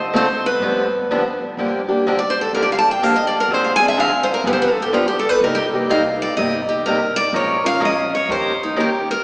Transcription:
0.00 0.41 D2 medium
0.00 0.12 C5 medium
0.13 0.25 D3 medium
0.13 0.25 A3 medium
0.13 0.26 C4 medium
0.13 0.25 F4 medium
0.13 0.26 A4 medium
0.13 0.44 C5 medium
0.46 1.37 B4 medium
0.60 1.37 G1 medium
0.60 0.84 D3 medium
0.60 0.84 F3 medium
0.60 0.84 B3 medium
0.60 0.84 D4 medium
0.60 0.84 G4 medium
1.11 1.22 D3 medium
1.11 1.22 F3 medium
1.11 1.22 B3 medium
1.11 1.22 D4 medium
1.11 1.22 G4 medium
1.57 2.34 G1 medium
1.57 1.80 D3 medium
1.57 1.80 F3 medium
1.57 1.80 A#3 medium
1.57 1.80 D4 medium
1.57 1.81 G4 medium
1.89 2.06 A#3 soft
1.89 2.05 D4 soft
1.89 2.05 G4 medium
2.07 2.18 D3 medium
2.07 2.18 F3 medium
2.07 2.18 A#3 medium
2.07 2.18 D4 medium
2.07 2.18 G4 medium
2.19 2.35 D5 medium
2.30 2.41 C5 medium
2.41 2.51 A4 medium
2.53 3.30 D2 medium
2.53 2.76 D3 medium
2.53 2.76 F3 medium
2.53 2.77 A#3 medium
2.53 2.77 D4 medium
2.53 2.77 G4 medium
2.53 2.64 A#4 medium
2.62 2.68 D5 medium
2.72 2.78 F5 medium
2.79 2.90 A5 medium
2.91 3.03 G5 medium
3.03 3.14 D3 medium
3.03 3.14 F3 medium
3.03 3.14 A#3 medium
3.03 3.14 D4 medium
3.03 3.14 G4 medium
3.03 3.18 F5 medium
3.16 3.27 D#5 medium
3.27 3.38 D5 medium
3.40 3.49 A#4 medium
3.48 4.26 D2 medium
3.48 3.72 D3 medium
3.48 3.72 F3 medium
3.48 3.72 C4 medium
3.48 3.72 D4 medium
3.48 3.73 G#4 medium
3.54 3.67 C5 medium
3.64 3.75 F5 medium
3.76 3.96 G#4 soft
3.76 3.86 G#5 loud
3.82 3.97 C4 soft
3.82 3.97 D4 soft
3.88 3.97 E5 medium
3.97 4.09 D3 medium
3.97 4.09 F3 medium
3.97 4.09 C4 medium
3.97 4.09 D4 medium
3.97 4.10 G#4 medium
3.97 4.29 F5 medium
4.23 4.33 C5 medium
4.34 4.43 A#4 medium
4.44 5.21 G1 medium
4.44 4.68 D3 medium
4.44 4.68 F3 medium
4.44 4.68 B3 medium
4.44 4.68 D4 medium
4.44 4.68 G4 medium
4.44 4.52 B4 medium
4.53 4.60 C5 medium
4.62 4.70 B4 medium
4.70 4.82 A4 medium
4.82 4.92 G4 medium
4.92 5.05 D3 medium
4.92 5.05 F3 medium
4.92 5.05 B3 medium
4.92 5.05 D4 medium
4.92 5.07 F4 medium
4.92 5.05 G4 medium
5.08 5.24 G4 medium
5.19 5.29 A4 medium
5.29 5.39 B4 medium
5.41 6.18 C2 medium
5.41 5.64 C3 medium
5.41 5.64 G3 medium
5.41 5.65 A#3 medium
5.41 5.65 D#4 medium
5.41 5.65 G4 medium
5.41 5.58 A#4 medium
5.55 5.65 G4 medium
5.74 5.89 A#3 soft
5.74 5.89 D#4 medium
5.74 5.89 G4 medium
5.89 6.01 C3 medium
5.89 6.02 G3 medium
5.89 6.02 A#3 medium
5.89 6.02 D#4 medium
5.89 6.02 G4 medium
5.89 6.20 F5 medium
6.22 6.36 D5 medium
6.37 7.14 G1 medium
6.37 6.60 C3 medium
6.37 6.60 G3 medium
6.37 6.60 A#3 medium
6.37 6.60 D#4 medium
6.37 6.61 G4 medium
6.37 6.67 D#5 medium
6.69 6.85 G4 medium
6.86 6.98 C3 medium
6.86 6.98 G3 medium
6.86 6.98 A#3 medium
6.86 6.98 D#4 medium
6.86 6.99 G4 medium
6.86 7.16 A#4 medium
7.16 7.33 D5 loud
7.33 8.10 A#1 medium
7.33 7.56 F3 medium
7.33 7.56 G#3 medium
7.33 7.56 C#4 medium
7.33 7.56 F4 medium
7.33 7.56 A#4 medium
7.33 7.65 C#5 medium
7.64 7.80 C#4 soft
7.64 7.80 F4 soft
7.64 7.80 A#4 soft
7.64 7.82 F5 loud
7.80 7.92 F3 medium
7.80 7.93 G#3 medium
7.80 7.93 C#4 medium
7.80 7.93 F4 medium
7.80 7.93 A#4 medium
7.85 8.14 D#5 medium
8.15 8.30 C#5 medium
8.28 9.06 D#2 medium
8.28 8.51 D#3 medium
8.28 8.52 A#3 medium
8.28 8.52 C#4 medium
8.28 8.52 G4 medium
8.28 8.52 A#4 medium
8.28 8.61 C5 medium
8.63 8.78 D#4 soft
8.76 8.89 D#3 medium
8.76 8.89 A#3 medium
8.76 8.89 C#4 medium
8.76 8.89 G4 medium
8.76 9.09 G4 medium
8.76 8.89 A#4 medium
9.11 9.24 A#4 medium

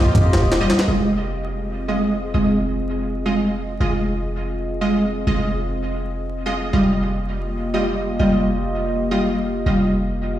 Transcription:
0.00 0.13 A#1 loud
0.00 0.32 A#3 loud
0.00 0.32 F4 loud
0.00 0.32 G4 loud
0.00 0.32 D#5 loud
0.06 kick loud
0.15 0.35 F2 loud
0.15 kick loud
0.15 closed hi-hat medium
0.33 0.68 D#1 loud
0.33 0.38 A#3 medium
0.33 0.38 F4 medium
0.33 0.38 G4 medium
0.33 0.38 D#5 medium
0.33 snare loud
0.33 closed hi-hat medium
0.42 kick medium
0.52 0.68 A#3 medium
0.52 0.68 F4 medium
0.52 0.68 G4 medium
0.52 0.68 D#5 loud
0.52 snare loud
0.52 closed hi-hat medium
0.61 0.70 G3 medium
0.61 0.70 F4 medium
0.61 0.70 D#5 loud
0.70 0.86 A#3 medium
0.70 0.86 F4 medium
0.70 0.86 G4 medium
0.70 0.86 D#5 medium
0.70 snare loud
0.70 closed hi-hat medium
0.79 snare loud
0.79 closed hi-hat medium
0.88 2.32 F1 medium
0.88 1.86 G#3 medium
0.88 3.79 C4 medium
0.88 1.86 F4 medium
0.88 3.79 F4 medium
0.88 3.79 G#4 medium
0.88 1.86 D#5 medium
0.88 3.79 D#5 medium
1.88 1.98 G#3 medium
1.88 1.98 F4 medium
1.88 1.98 D#5 medium
2.34 3.79 F1 medium
2.34 2.44 G#3 medium
2.34 2.44 F4 medium
2.34 2.44 D#5 medium
3.26 3.35 G#3 medium
3.26 3.35 F4 medium
3.26 3.35 D#5 medium
3.80 5.25 F1 medium
3.80 4.79 G#3 medium
3.80 6.71 C4 medium
3.80 6.71 F4 medium
3.80 4.79 F4 medium
3.80 6.71 G#4 medium
3.80 4.79 D#5 medium
3.80 6.71 D#5 medium
4.81 4.91 G#3 medium
4.81 4.91 F4 medium
4.81 4.91 D#5 medium
5.27 6.71 F1 medium
5.27 5.37 G#3 medium
5.27 5.37 F4 medium
5.27 5.37 D#5 medium
6.46 6.56 G#3 medium
6.46 6.56 F4 medium
6.46 6.56 D#5 medium
6.73 8.18 F1 medium
6.73 7.72 G3 medium
6.73 9.64 A#3 medium
6.73 7.72 F4 medium
6.73 9.64 F4 medium
6.73 9.64 G4 medium
6.73 7.72 D#5 medium
6.73 9.64 D#5 medium
7.74 7.83 G3 medium
7.74 7.83 F4 medium
7.74 7.84 D#5 medium
8.19 9.64 F1 medium
8.19 8.29 G3 medium
8.19 8.29 F4 medium
8.19 8.29 D#5 medium
9.11 9.21 G3 medium
9.11 9.21 F4 medium
9.11 9.21 D#5 medium
9.66 10.39 F1 medium
9.66 10.39 G3 medium
9.66 10.39 A#3 medium
9.66 10.39 F4 medium
9.66 10.39 G4 medium
9.66 10.39 D#5 medium

